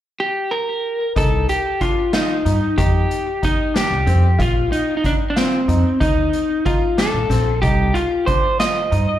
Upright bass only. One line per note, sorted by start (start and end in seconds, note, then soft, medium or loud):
1.16 1.42 C2 medium
2.46 2.58 G2 medium
2.78 3.04 F2 medium
3.91 4.04 C2 medium
4.07 4.41 F2 medium
4.40 4.65 A#1 medium
5.68 5.81 F2 medium
6.01 6.27 D2 medium
7.14 7.27 A#1 medium
7.30 7.63 A#1 medium
7.63 7.89 C2 medium
8.92 9.05 G2 medium